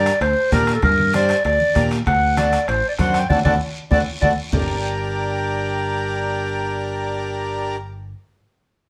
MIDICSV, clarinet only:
0, 0, Header, 1, 2, 480
1, 0, Start_track
1, 0, Key_signature, -2, "minor"
1, 0, Tempo, 308801
1, 1284, Time_signature, 4, 2, 24, 8
1, 13820, End_track
2, 0, Start_track
2, 0, Title_t, "Clarinet"
2, 0, Program_c, 0, 71
2, 0, Note_on_c, 0, 74, 91
2, 303, Note_off_c, 0, 74, 0
2, 339, Note_on_c, 0, 72, 100
2, 779, Note_off_c, 0, 72, 0
2, 823, Note_on_c, 0, 70, 87
2, 1112, Note_off_c, 0, 70, 0
2, 1146, Note_on_c, 0, 69, 79
2, 1284, Note_off_c, 0, 69, 0
2, 1298, Note_on_c, 0, 70, 97
2, 1738, Note_off_c, 0, 70, 0
2, 1784, Note_on_c, 0, 74, 88
2, 2220, Note_off_c, 0, 74, 0
2, 2259, Note_on_c, 0, 74, 91
2, 2921, Note_off_c, 0, 74, 0
2, 3215, Note_on_c, 0, 78, 98
2, 3655, Note_off_c, 0, 78, 0
2, 3695, Note_on_c, 0, 74, 78
2, 4167, Note_on_c, 0, 72, 86
2, 4191, Note_off_c, 0, 74, 0
2, 4474, Note_off_c, 0, 72, 0
2, 4483, Note_on_c, 0, 74, 69
2, 4555, Note_off_c, 0, 74, 0
2, 4658, Note_on_c, 0, 78, 90
2, 4961, Note_on_c, 0, 79, 85
2, 4985, Note_off_c, 0, 78, 0
2, 5106, Note_off_c, 0, 79, 0
2, 5116, Note_on_c, 0, 74, 84
2, 5233, Note_off_c, 0, 74, 0
2, 5358, Note_on_c, 0, 74, 79
2, 5474, Note_off_c, 0, 74, 0
2, 6080, Note_on_c, 0, 74, 85
2, 6196, Note_off_c, 0, 74, 0
2, 6554, Note_on_c, 0, 74, 86
2, 6671, Note_off_c, 0, 74, 0
2, 7036, Note_on_c, 0, 79, 81
2, 12062, Note_off_c, 0, 79, 0
2, 13820, End_track
0, 0, End_of_file